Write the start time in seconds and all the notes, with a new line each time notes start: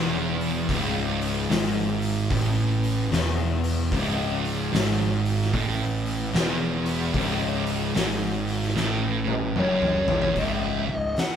Already playing: E1 E2
0.41 open hi-hat
0.69 C#1 C#2, kick, open hi-hat
1.22 open hi-hat
1.50 G#1 G#2, snare, open hi-hat
2.02 open hi-hat
2.30 A1 A2, kick, open hi-hat
2.83 open hi-hat
3.11 E1 E2, snare, open hi-hat
3.64 open hi-hat
3.91 C#1 C#2, kick, open hi-hat
4.45 open hi-hat
4.73 G#1 G#2, snare, open hi-hat
5.26 open hi-hat
5.42 snare
5.54 A1 A2, kick, open hi-hat
6.06 open hi-hat
6.34 E1 E2, snare, open hi-hat
6.86 open hi-hat
7.14 C#1 C#2, kick, open hi-hat
7.67 open hi-hat
7.95 G#1 G#2, snare, open hi-hat
8.47 open hi-hat
8.63 snare
8.76 A1 A2, snare
9.27 high tom
9.56 F#1 F#2 C#5, mid tom
9.82 mid tom
10.08 E1 E2, floor tom
10.22 floor tom
10.36 C#1 C#2 E5, kick, open hi-hat
10.88 C#1 C#2
10.95 D#5
11.16 F#5, snare, open hi-hat